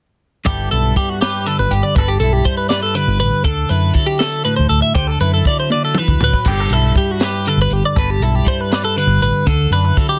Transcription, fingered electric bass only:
0.46 G1
0.72 B1
1.59 G1
1.70 G1
1.96 G1
2.19 B1
3.08 G1
3.20 A1
3.44 D2
3.70 F#2
4.59 D2
4.70 D2
4.96 D2
5.20 F#2
6.08 D2
6.20 D2
6.46 G1
6.70 B1
7.57 G1
7.71 G1
7.96 G1
8.20 B1
9.07 G1
9.19 A1
9.46 D2
9.70 F#2

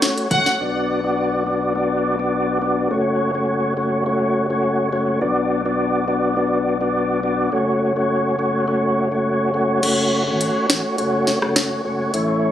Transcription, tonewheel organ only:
Already playing: A3 C#4 F#4 C#5
0.31 A3 C#4 F#4 C#5
0.60 B3 D4 F#4 D5
1.04 B3 D4 F#4 D5
1.46 B3 D4 F#4 D5
1.75 B3 D4 F#4 D5
2.19 B3 D4 F#4 D5
2.62 B3 D4 F#4 D5
2.90 A3 C#4 F#4 C#5
3.35 A3 C#4 F#4 C#5
3.77 A3 C#4 F#4 C#5
4.06 A3 C#4 F#4 C#5
4.50 A3 C#4 F#4 C#5
4.92 A3 C#4 F#4 C#5
5.21 B3 D4 F#4 D5
5.65 B3 D4 F#4 D5
6.08 B3 D4 F#4 D5
6.37 B3 D4 F#4 D5
6.81 B3 D4 F#4 D5
7.23 B3 D4 F#4 D5
7.52 A3 C#4 F#4 C#5
7.96 A3 C#4 F#4 C#5
8.39 A3 C#4 F#4 C#5
8.67 A3 C#4 F#4 C#5
9.12 A3 C#4 F#4 C#5
9.54 A3 C#4 F#4 C#5
9.83 A3 C#4 F#4 C#5
10.27 A3 C#4 F#4 C#5
10.69 A3 C#4 F#4 C#5
10.98 A3 C#4 F#4 C#5
11.42 A3 C#4 F#4 C#5
11.85 A3 C#4 F#4 C#5
12.14 A3 C#4 E4 C#5

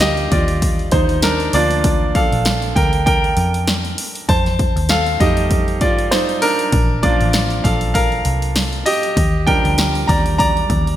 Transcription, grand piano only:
Already playing: F3 G3 D4 A#4 F5 G5
0.00 G4 D#5
0.31 F4 D5
0.92 D#4 C5
1.23 D4 A#4
1.54 F3 A#3 D4 F4 D5
2.15 A4 F5
2.76 A#4 G5
3.06 A#4 G5
4.29 C5 A5
4.90 A4 F5
5.20 G3 A3 D#4 G4 D#5
5.81 F4 D5
6.11 D#4 C5
6.42 D4 A#4
7.02 F3 A#3 D4 F4 D5
7.64 A4 F5
7.94 A#4 F5
8.86 G4 D#5
9.46 F3 G3 D4 A#4 G5
10.07 D5 A#5
10.38 D5 A#5

